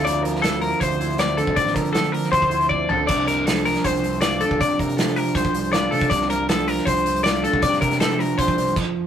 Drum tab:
CC |----------------|----------------|x---------------|----------------|
HH |x-x-xxoxxxxxxxx-|xxxxxxoxxxxx----|x-x-xxoxxxxxxxx-|xxxxxxoxxxxxx-ox|
SD |---oo-------o---|-o--o--o--------|----o-oo----o---|----o-------o---|
FT |----------------|--------------o-|----------------|----------------|
BD |--------o------o|o-o-----oo--o---|o-------o------o|o-o-----oo-----o|

CC |----------------|------------x---|
HH |x-x-xxoxxxxxxxx-|x-xxxxoxxxxx----|
SD |-o--o--o----o---|-o-oo-----------|
FT |----------------|----------------|
BD |o-------o------o|o-o-----oo--o---|